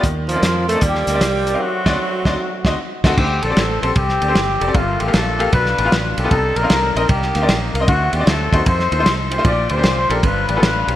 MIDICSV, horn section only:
0, 0, Header, 1, 2, 480
1, 0, Start_track
1, 0, Tempo, 392157
1, 44, Time_signature, 4, 2, 24, 8
1, 13413, End_track
2, 0, Start_track
2, 0, Title_t, "Horn section"
2, 0, Program_c, 0, 61
2, 363, Note_on_c, 0, 60, 59
2, 368, Note_on_c, 0, 58, 66
2, 377, Note_on_c, 0, 65, 86
2, 815, Note_off_c, 0, 65, 0
2, 853, Note_on_c, 0, 69, 94
2, 1002, Note_off_c, 0, 69, 0
2, 1008, Note_off_c, 0, 60, 0
2, 1010, Note_off_c, 0, 58, 0
2, 1023, Note_on_c, 0, 60, 71
2, 1025, Note_on_c, 0, 58, 67
2, 1032, Note_on_c, 0, 67, 91
2, 1927, Note_off_c, 0, 60, 0
2, 1928, Note_off_c, 0, 58, 0
2, 1981, Note_off_c, 0, 67, 0
2, 1981, Note_on_c, 0, 66, 89
2, 1984, Note_on_c, 0, 57, 62
2, 1985, Note_on_c, 0, 60, 59
2, 3369, Note_off_c, 0, 57, 0
2, 3369, Note_off_c, 0, 60, 0
2, 3416, Note_off_c, 0, 66, 0
2, 3723, Note_on_c, 0, 66, 77
2, 3879, Note_off_c, 0, 66, 0
2, 3888, Note_on_c, 0, 67, 89
2, 3896, Note_on_c, 0, 60, 65
2, 4190, Note_off_c, 0, 60, 0
2, 4198, Note_on_c, 0, 69, 83
2, 4202, Note_off_c, 0, 67, 0
2, 4205, Note_on_c, 0, 60, 65
2, 4667, Note_off_c, 0, 69, 0
2, 4681, Note_on_c, 0, 69, 85
2, 4837, Note_off_c, 0, 69, 0
2, 4840, Note_off_c, 0, 60, 0
2, 4849, Note_on_c, 0, 67, 97
2, 4855, Note_on_c, 0, 60, 67
2, 5763, Note_off_c, 0, 60, 0
2, 5808, Note_off_c, 0, 67, 0
2, 5812, Note_on_c, 0, 65, 95
2, 5818, Note_on_c, 0, 57, 70
2, 5819, Note_on_c, 0, 58, 68
2, 6123, Note_off_c, 0, 65, 0
2, 6124, Note_on_c, 0, 67, 87
2, 6287, Note_on_c, 0, 69, 99
2, 6290, Note_off_c, 0, 67, 0
2, 6294, Note_on_c, 0, 62, 66
2, 6297, Note_on_c, 0, 65, 67
2, 6724, Note_off_c, 0, 57, 0
2, 6724, Note_off_c, 0, 58, 0
2, 6738, Note_off_c, 0, 62, 0
2, 6739, Note_off_c, 0, 65, 0
2, 6763, Note_on_c, 0, 71, 104
2, 6766, Note_on_c, 0, 62, 75
2, 6767, Note_off_c, 0, 69, 0
2, 6771, Note_on_c, 0, 65, 72
2, 7508, Note_off_c, 0, 71, 0
2, 7558, Note_on_c, 0, 67, 92
2, 7677, Note_off_c, 0, 62, 0
2, 7679, Note_off_c, 0, 65, 0
2, 7724, Note_on_c, 0, 69, 104
2, 7726, Note_off_c, 0, 67, 0
2, 7732, Note_on_c, 0, 63, 75
2, 7734, Note_on_c, 0, 62, 72
2, 8037, Note_off_c, 0, 69, 0
2, 8038, Note_off_c, 0, 62, 0
2, 8038, Note_off_c, 0, 63, 0
2, 8043, Note_on_c, 0, 70, 98
2, 8053, Note_on_c, 0, 62, 68
2, 8053, Note_on_c, 0, 63, 68
2, 8507, Note_off_c, 0, 70, 0
2, 8521, Note_on_c, 0, 70, 88
2, 8676, Note_off_c, 0, 70, 0
2, 8680, Note_off_c, 0, 63, 0
2, 8687, Note_on_c, 0, 67, 96
2, 8693, Note_on_c, 0, 58, 71
2, 8695, Note_on_c, 0, 63, 71
2, 8956, Note_off_c, 0, 62, 0
2, 9363, Note_off_c, 0, 67, 0
2, 9600, Note_off_c, 0, 58, 0
2, 9600, Note_off_c, 0, 63, 0
2, 9647, Note_on_c, 0, 66, 100
2, 9651, Note_on_c, 0, 57, 73
2, 9651, Note_on_c, 0, 60, 72
2, 9936, Note_off_c, 0, 66, 0
2, 9957, Note_on_c, 0, 67, 90
2, 10110, Note_off_c, 0, 60, 0
2, 10113, Note_off_c, 0, 67, 0
2, 10123, Note_on_c, 0, 69, 101
2, 10125, Note_on_c, 0, 60, 71
2, 10127, Note_on_c, 0, 66, 70
2, 10558, Note_off_c, 0, 57, 0
2, 10571, Note_off_c, 0, 60, 0
2, 10572, Note_off_c, 0, 66, 0
2, 10595, Note_off_c, 0, 69, 0
2, 10603, Note_on_c, 0, 63, 73
2, 10606, Note_on_c, 0, 72, 103
2, 10610, Note_on_c, 0, 69, 79
2, 11196, Note_off_c, 0, 72, 0
2, 11404, Note_on_c, 0, 72, 98
2, 11514, Note_off_c, 0, 63, 0
2, 11517, Note_off_c, 0, 69, 0
2, 11556, Note_off_c, 0, 72, 0
2, 11572, Note_on_c, 0, 74, 105
2, 11575, Note_on_c, 0, 65, 84
2, 11575, Note_on_c, 0, 67, 80
2, 11864, Note_off_c, 0, 67, 0
2, 11866, Note_off_c, 0, 65, 0
2, 11879, Note_on_c, 0, 67, 74
2, 11880, Note_off_c, 0, 74, 0
2, 11880, Note_on_c, 0, 72, 99
2, 11881, Note_on_c, 0, 65, 76
2, 12357, Note_off_c, 0, 72, 0
2, 12364, Note_on_c, 0, 70, 95
2, 12479, Note_off_c, 0, 65, 0
2, 12479, Note_off_c, 0, 67, 0
2, 12525, Note_on_c, 0, 65, 73
2, 12525, Note_on_c, 0, 71, 104
2, 12527, Note_off_c, 0, 70, 0
2, 12527, Note_on_c, 0, 62, 75
2, 12988, Note_off_c, 0, 62, 0
2, 12989, Note_off_c, 0, 71, 0
2, 12990, Note_off_c, 0, 65, 0
2, 13003, Note_on_c, 0, 62, 74
2, 13004, Note_on_c, 0, 65, 70
2, 13004, Note_on_c, 0, 71, 97
2, 13413, Note_off_c, 0, 62, 0
2, 13413, Note_off_c, 0, 65, 0
2, 13413, Note_off_c, 0, 71, 0
2, 13413, End_track
0, 0, End_of_file